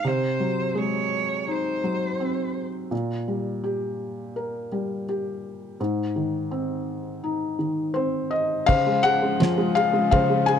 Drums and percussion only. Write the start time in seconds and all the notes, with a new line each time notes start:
8.69 kick, crash
9.05 ride
9.40 snare, ride
9.77 ride
10.12 kick, ride
10.48 ride